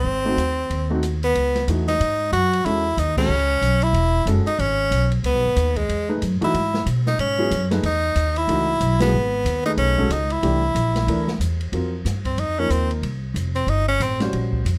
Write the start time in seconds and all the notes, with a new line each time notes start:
Already playing: C4
0.04 G#1
0.25 A3 C4 D#4 F#4
0.37 D#2, hi-hat pedal, ride
0.70 D#2, ride
0.90 A3 C4 D#4 F#4
1.03 hi-hat pedal, ride
1.23 B3, ride
1.35 C#2, ride
1.55 snare, ride
1.67 E2 E3 A3 D#4 F#4, hi-hat pedal, ride
1.88 D#4, snare, ride
2.00 G#2, ride
2.32 F#2 F#4, hi-hat pedal, ride
2.53 ride
2.64 E2 G#3 C#4 E4 F#4 A4, ride
2.97 D#2 D#4, hi-hat pedal, ride
3.17 G#3 C#4 F#4 A4, kick, crash
3.29 C#2
3.61 B1, hi-hat pedal, ride
3.82 E4, ride
3.93 E1, ride
4.25 F#1 G#3 C#4 F#4 A4, hi-hat pedal, ride
4.47 D#4, ride
4.59 G#1 C#4, ride
4.91 B1, hi-hat pedal, ride
5.12 ride
5.23 C#2 B3, ride
5.34 B1
5.45 G#1
5.56 D#2, hi-hat pedal, ride
5.76 G#3, kick, ride
5.89 E2, ride
6.09 A3 D#4 G#4 B4
6.22 F#2, hi-hat pedal, ride
6.41 E3 A3 D#4 E4 F#4, muted upright bass stroke, ride
6.54 G#2, ride
6.74 snare
6.86 B2, hi-hat pedal, ride
7.07 D#4, snare
7.19 G#2 C#4, ride
7.38 F#3 B3 E4 G#4
7.51 F#2, hi-hat pedal, ride
7.71 A3 D#4 G#4 B4, snare, ride
7.83 E2 D#4, ride
8.15 D#2, hi-hat pedal, ride
8.36 E4, ride
8.48 C#2 E3 A3 D#4 F#4, ride
8.80 B1, hi-hat pedal, ride
9.00 F#3 B3 E4 G#4, snare, ride
9.13 G#1
9.45 D#2, hi-hat pedal, ride
9.65 A3 D#4 G#4 B4, ride
9.77 B1 C#4, ride
9.98 G#3 C#4 F#4 A4, kick
10.10 C#2 D#4, hi-hat pedal, ride
10.30 E4, ride
10.43 C2 E3 A3 D4 G4, ride
10.75 A#1, hi-hat pedal, ride
10.96 snare, ride
11.07 D2 E3 A3 D4 A#4, ride
11.28 snare
11.40 E2, hi-hat pedal, ride
11.61 ride
11.72 F2 F#3 C4 F4 A#4, ride
12.05 G2, snare, hi-hat pedal, ride
12.25 C4, kick, ride
12.38 F2 D#4, ride
12.58 F3 A#3 C#4 D#4 A#4
12.70 D#2 C4, hi-hat pedal, ride
12.91 ride
13.02 C2, ride
13.34 F1, hi-hat pedal, ride
13.56 C4, ride
13.67 G1 D#4, ride
13.88 C#4
14.00 A1 C4, hi-hat pedal, ride
14.20 G3 C#4 F#4 C5, snare, ride
14.33 A#1, ride
14.53 kick
14.65 F2, hi-hat pedal, ride